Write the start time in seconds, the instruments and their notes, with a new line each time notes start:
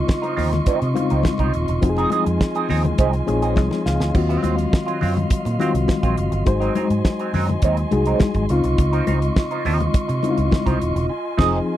Already playing: reed electric piano C#3 C4 D#4 F4, tonewheel organ F4 D#5 C6 C#6
0.07 muted clean electric guitar stroke, kick, snare, muted conga
0.22 clean electric guitar F3 C4 D#4, closed hi-hat, muted conga
0.36 fingered electric bass D#2, clean electric guitar F3 C4 D#4, open hi-hat, low conga
0.52 snare, closed hi-hat, high conga, low conga
0.66 clean electric guitar F3 C4 D#4, kick, closed hi-hat
0.81 fingered electric bass C3, muted clean electric guitar stroke, closed hi-hat
0.94 reed electric piano C#3 C4 D#4 F4, muted clean electric guitar stroke, closed hi-hat, high conga
1.10 fingered electric bass C#2, clean electric guitar F3 C4 D#4, closed hi-hat
1.23 kick, snare, muted conga, high conga
1.38 fingered electric bass C2, clean electric guitar F3 C4 D#4, kick, closed hi-hat, muted conga
1.54 fingered electric bass D#1, closed hi-hat
1.68 fingered electric bass E1, muted clean electric guitar stroke, closed hi-hat
1.81 fingered electric bass F1, reed electric piano F3 C4 D#4 F#4, tonewheel organ G#5, muted clean electric guitar stroke, kick, closed hi-hat, muted conga
1.90 reed electric piano G#4
1.97 clean electric guitar C4 D#4 G#4, closed hi-hat, muted conga
2.10 clean electric guitar C4 D#4 G#4, closed hi-hat, high conga
2.26 fingered electric bass F2, muted clean electric guitar stroke, closed hi-hat
2.41 muted clean electric guitar stroke, kick, snare
2.55 clean electric guitar C4 D#4 G#4, closed hi-hat, muted conga
2.69 fingered electric bass D#2, clean electric guitar C4 D#4 G#4, open hi-hat, low conga
2.85 muted clean electric guitar stroke, closed hi-hat, high conga, low conga
2.98 fingered electric bass C2, clean electric guitar C4 D#4 G#4, kick, closed hi-hat
3.13 muted clean electric guitar stroke, closed hi-hat
3.26 fingered electric bass A#1, reed electric piano F3 C4 D#4 G#4 C#5, muted clean electric guitar stroke, closed hi-hat, high conga
3.42 clean electric guitar C4 D#4 G#4, closed hi-hat
3.56 fingered electric bass C2, reed electric piano D#5, kick, snare, muted conga, high conga
3.71 muted clean electric guitar stroke, snare, muted conga
3.86 fingered electric bass C#2, reed electric piano F5, snare
4.00 fingered electric bass D2, muted clean electric guitar stroke, snare
4.14 fingered electric bass D#2, reed electric piano D#3 C4 F4 F#4, tonewheel organ F#3 F5, muted clean electric guitar stroke, kick, crash
4.29 clean electric guitar F#3 C4 F4, closed hi-hat
4.43 fingered electric bass D#2, clean electric guitar F#3 C4 F4, closed hi-hat, high conga
4.57 muted clean electric guitar stroke, closed hi-hat
4.72 muted clean electric guitar stroke, kick, snare, muted conga
4.87 clean electric guitar F#3 C4 F4, closed hi-hat, muted conga
5.01 fingered electric bass F#2, clean electric guitar F#3 C4 F4, open hi-hat, low conga
5.17 muted clean electric guitar stroke, closed hi-hat, high conga, low conga
5.30 kick, closed hi-hat
5.45 fingered electric bass A#2, muted clean electric guitar stroke, closed hi-hat, muted conga
5.59 reed electric piano D#3 C4 F4 F#4, clean electric guitar F#3 C4 F4, closed hi-hat, high conga
5.74 fingered electric bass C2, closed hi-hat
5.88 muted clean electric guitar stroke, kick, snare, muted conga, high conga
6.03 fingered electric bass A#1, clean electric guitar F#3 C4 F4, kick, closed hi-hat
6.17 fingered electric bass F#1, muted clean electric guitar stroke, closed hi-hat
6.32 fingered electric bass G1, muted clean electric guitar stroke, closed hi-hat
6.46 fingered electric bass G#1, reed electric piano G#3 D#4 F#4 C5, tonewheel organ G#5, muted clean electric guitar stroke, kick, closed hi-hat
6.60 clean electric guitar F#3 C4 D#4, closed hi-hat
6.75 clean electric guitar F#3 C4 D#4, closed hi-hat, high conga
6.90 fingered electric bass G#2, closed hi-hat
7.05 muted clean electric guitar stroke, kick, snare, muted conga
7.19 clean electric guitar F#3 C4 D#4, closed hi-hat
7.34 fingered electric bass F#2, clean electric guitar F#3 C4 D#4, open hi-hat, low conga
7.48 muted clean electric guitar stroke, closed hi-hat, high conga, low conga
7.62 fingered electric bass D#2, clean electric guitar F#3 C4 D#4, kick, closed hi-hat
7.77 muted clean electric guitar stroke, closed hi-hat, muted conga
7.91 fingered electric bass C2, reed electric piano G#3 D#4 F#4 G#4, muted clean electric guitar stroke, closed hi-hat, high conga
8.06 clean electric guitar F#3 C4 D#4, closed hi-hat
8.20 muted clean electric guitar stroke, kick, snare, muted conga, high conga
8.34 fingered electric bass G#1, muted clean electric guitar stroke, kick, closed hi-hat, muted conga
8.49 fingered electric bass C#2, reed electric piano C#3 C4 D#4 F4, tonewheel organ F4 D#5 C#6, closed hi-hat
8.64 fingered electric bass C2, muted clean electric guitar stroke, closed hi-hat
8.78 fingered electric bass C#2, muted clean electric guitar stroke, kick, closed hi-hat, muted conga
8.93 clean electric guitar F3 C4 D#4, closed hi-hat
9.07 fingered electric bass C#2, clean electric guitar F3 C4 D#4, closed hi-hat, high conga
9.22 muted clean electric guitar stroke, closed hi-hat
9.36 muted clean electric guitar stroke, kick, snare, muted conga
9.51 clean electric guitar F3 C4 D#4, closed hi-hat
9.65 fingered electric bass D#2, clean electric guitar F3 C4 D#4, open hi-hat, low conga
9.80 muted clean electric guitar stroke, closed hi-hat, high conga, low conga
9.94 muted clean electric guitar stroke, kick, closed hi-hat
10.08 fingered electric bass C3, muted clean electric guitar stroke, closed hi-hat, muted conga
10.23 reed electric piano C#3 C4 D#4 E4, closed hi-hat, high conga
10.31 reed electric piano F4
10.37 fingered electric bass C#2, muted clean electric guitar stroke, closed hi-hat
10.51 muted clean electric guitar stroke, kick, snare, muted conga, high conga
10.66 fingered electric bass C2, clean electric guitar F3 C4 D#4, kick, closed hi-hat
10.81 fingered electric bass D#1, closed hi-hat
10.95 fingered electric bass E1, muted clean electric guitar stroke, closed hi-hat
11.09 tonewheel organ G#5 C6
11.37 fingered electric bass F1, reed electric piano F3 C4 D#4 G#4, clean electric guitar C4 D#4 G#4, kick, snare, crash